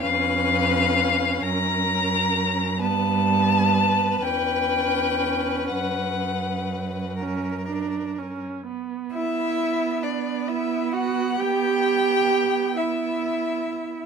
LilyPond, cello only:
\new Staff \with { instrumentName = "Cello" } { \time 6/8 \key b \minor \tempo 4. = 43 eis,4. fis,4. | g,4. e,4. | fis,2. | r8 e'4 d'8 e'8 fis'8 |
g'4. e'4. | }